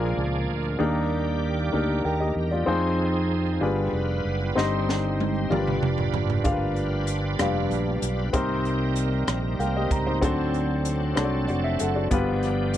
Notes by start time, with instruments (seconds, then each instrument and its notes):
Already playing: fingered electric bass A#1, grand piano A#2 A#3 D4 F4 G#4 A#4, french horn section F3 G#3 A#3 D4, tonewheel organ F3 A#3 D4 G#4
0.17 fingered electric bass C#2
0.49 fingered electric bass D2
0.78 fingered electric bass D#2, grand piano D#3 A#3 D4 D#4 G4 A#4, tonewheel organ G3 A#3 G4 D5, french horn section G3
1.72 fingered electric bass D2, grand piano A#3 D4 D#4 G4 A#4
2.04 fingered electric bass D#2, grand piano A#4 G5, tonewheel organ A#4 D5
2.20 grand piano G4 D#5
2.36 fingered electric bass E2, tonewheel organ G4 A#4
2.51 tonewheel organ D#4 G4, grand piano F4 D5
2.66 fingered electric bass F2, french horn section D#3 F3 C4 D#4, tonewheel organ F3 C4 D#4 G#4, grand piano C4 D#4 F4 G#4 C5
3.61 fingered electric bass G1, grand piano G3 D4 F4 G4 G#4 B4, tonewheel organ G3 B3 F4 B4, french horn section G3 B3 F4
3.93 fingered electric bass F1
4.25 fingered electric bass F#1
4.55 fingered electric bass G1, grand piano G2 C4 D#4 G4 C5 D#5, french horn section D#3 C4 D#4, tonewheel organ G3 C4 D#4 C5, snare
4.89 snare
5.20 high tom
5.50 fingered electric bass G1, french horn section F3 B3 D4, tonewheel organ G3 D4 F4 A#4, grand piano G3 D4 F4 G4 A#4 D5, mid tom
5.57 tonewheel organ B4, grand piano B4
5.67 mid tom
5.82 fingered electric bass F1, mid tom
5.98 floor tom
6.14 fingered electric bass F#1, floor tom
6.30 floor tom
6.44 fingered electric bass G1, grand piano D4 F4 G4 A#4 F5, kick, closed hi-hat
6.52 grand piano B4
6.76 closed hi-hat
7.07 closed hi-hat
7.39 fingered electric bass F1, grand piano G2 D4 F4 G4 B4 F5, cross-stick, closed hi-hat
7.70 fingered electric bass A#1, closed hi-hat
8.02 fingered electric bass B1, closed hi-hat
8.33 fingered electric bass C2, grand piano C3 C4 D#4 G4 A#4 C5, french horn section D#3 G3 A#3 C4, tonewheel organ G3 C4 D#4 A#4, kick, closed hi-hat
8.65 closed hi-hat
8.96 closed hi-hat
9.28 fingered electric bass A#1, cross-stick, closed hi-hat
9.59 fingered electric bass C2, grand piano A#4 F5 G5, closed hi-hat
9.76 grand piano G4 D#5
9.91 fingered electric bass C#2, grand piano A#5, kick, closed hi-hat
10.07 grand piano D#4 C5
10.21 fingered electric bass D2, french horn section D3 F#3 A3, grand piano D3 C4 D4 F#4 A4 C5, tonewheel organ F#3 C4 D4 A4, kick, closed hi-hat
10.54 closed hi-hat
10.85 closed hi-hat
11.16 fingered electric bass C2, grand piano C4 D4 F#4 A4 C#5, cross-stick, closed hi-hat
11.24 grand piano D5
11.48 fingered electric bass F1, grand piano F#4 D5, closed hi-hat
11.64 grand piano E5
11.79 fingered electric bass F#1, grand piano A4 F#5, closed hi-hat
11.96 grand piano F#4 D5
12.10 fingered electric bass G1, grand piano G2 B3 D4 F4 G4 B4, french horn section F3 G3 B3, tonewheel organ F3 B3 D4 G4, kick, closed hi-hat
12.43 cross-stick, closed hi-hat
12.74 closed hi-hat